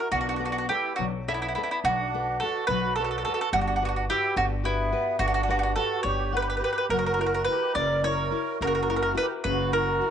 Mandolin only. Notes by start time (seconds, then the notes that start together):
0.12 F#4
0.21 F#4
0.29 F#4
0.36 F#4
0.45 F#4
0.52 F#4
0.58 F#4
0.69 G4
0.96 F#4
1.28 E4
1.34 E4
1.42 E4
1.48 E4
1.55 E4
1.63 E4
1.71 E4
1.85 F#4
2.40 A4
2.67 B4
2.96 A4
3.04 A4
3.11 A4
3.18 A4
3.25 A4
3.34 A4
3.41 A4
3.53 F#4
3.61 F#4
3.68 F#4
3.76 F#4
3.85 F#4
3.96 F#4
4.10 G4
4.37 F#4
4.65 E4
5.19 F#4
5.28 F#4
5.34 F#4
5.43 F#4
5.50 F#4
5.59 F#4
5.63 F#4
5.76 A4
6.03 C#5
6.37 B4
6.42 B4
6.50 B4
6.57 B4
6.64 B4
6.73 B4
6.78 B4
6.90 A#4
6.99 A#4
7.06 A#4
7.14 A#4
7.21 A#4
7.26 A#4
7.34 A#4
7.45 B4
7.75 D5
8.04 C#5
8.62 A#4
8.67 A#4
8.75 A#4
8.83 A#4
8.90 A#4
8.96 A#4
9.02 A#4
9.17 B4
9.44 B4
9.73 A#4